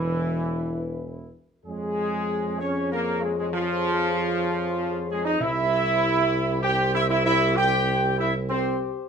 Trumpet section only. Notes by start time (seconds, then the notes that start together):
Already playing: E4
1.65 G#4
2.61 C#5
2.92 A#4
3.24 G#4
3.39 G#4
3.55 F4
5.10 G#4
5.26 D#5
5.40 E5
6.64 G5
6.94 E5
7.09 E5
7.25 E5
7.57 G5
8.20 E5
8.50 C5